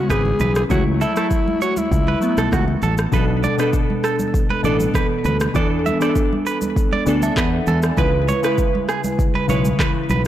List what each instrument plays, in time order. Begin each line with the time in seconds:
Already playing: synth keys C#3 G#3 B3 C#4 E4
0.10 fingered electric bass G#1, alto saxophone G#4, clean electric guitar B4, kick, cross-stick, shaker
0.25 high conga
0.40 fingered electric bass B1, clean electric guitar B4, high conga, low conga, shaker
0.55 alto saxophone G#4, cross-stick, shaker
0.69 fingered electric bass C#2, synth keys F#3 A3 E4, alto saxophone F#4, clean electric guitar C#5, kick, low conga, shaker
1.01 alto saxophone E4, clean electric guitar A4, high conga, shaker
1.15 synth keys F#3 A3 E4, clean electric guitar A4, cross-stick, shaker
1.31 kick, shaker
1.48 high conga
1.62 alto saxophone F#4, clean electric guitar C#5, shaker
1.77 alto saxophone E4, high conga, shaker
1.92 fingered electric bass C#2, kick, shaker
2.07 clean electric guitar B4, high conga
2.21 synth keys F#3 A3 B3, shaker
2.38 fingered electric bass B1, clean electric guitar A4, cross-stick, high conga, shaker
2.51 fingered electric bass C#2, clean electric guitar F#4, kick, cross-stick, low conga, shaker
2.68 high conga
2.82 fingered electric bass A1, clean electric guitar A4, high conga, low conga, shaker
2.98 cross-stick, shaker
3.12 fingered electric bass B1, synth keys B2 B3 D4 A4, clean electric guitar B4, kick, low conga, shaker
3.44 clean electric guitar D5, high conga, shaker
3.58 synth keys B2 B3 D4 A4, clean electric guitar B4, cross-stick, shaker
3.73 kick, shaker
3.90 high conga
4.04 clean electric guitar A4, cross-stick, shaker
4.19 high conga, shaker
4.34 kick, shaker
4.50 clean electric guitar B4, high conga
4.63 fingered electric bass A1, synth keys B2 B3 D4 A4, clean electric guitar D5, shaker
4.80 high conga, shaker
4.94 clean electric guitar B4, kick, cross-stick, low conga, shaker
5.25 fingered electric bass D2, clean electric guitar B4, high conga, low conga, shaker
5.40 cross-stick, shaker
5.54 fingered electric bass E2, synth keys E3 B3 D4 A4, clean electric guitar D5, kick, low conga, shaker
5.86 clean electric guitar E5, high conga, shaker
6.00 synth keys E3 B3 D4 A4, clean electric guitar D5, cross-stick, shaker
6.16 kick, shaker
6.33 high conga
6.46 clean electric guitar B4, shaker
6.62 high conga, shaker
6.76 kick, shaker
6.92 clean electric guitar D5, high conga
7.06 fingered electric bass D2, synth keys E3 B3 D4 A4 D5, shaker
7.22 clean electric guitar A4, synth keys E5, high conga, shaker
7.36 fingered electric bass E2, clean electric guitar B4, synth keys F#5, kick, cross-stick, clap, low conga, shaker
7.67 fingered electric bass E2, clean electric guitar A4, synth keys G#5, high conga, low conga, shaker
7.83 cross-stick, shaker
7.96 fingered electric bass C#2, synth keys C#3 G#3 E4 B4, clean electric guitar B4, kick, low conga, shaker
8.28 clean electric guitar C#5, high conga, shaker
8.42 synth keys C#3 G#3 E4 B4, clean electric guitar B4, cross-stick, shaker
8.58 kick, shaker
8.75 high conga
8.89 clean electric guitar G#4, cross-stick, shaker
9.04 high conga, shaker
9.19 kick, shaker
9.35 clean electric guitar B4, high conga
9.48 fingered electric bass B1, synth keys C#3 G#3 E4 B4, clean electric guitar C#5, shaker
9.65 high conga, shaker
9.79 clean electric guitar B4, kick, cross-stick, clap, low conga, shaker
10.10 fingered electric bass B1, clean electric guitar B4, high conga, low conga, shaker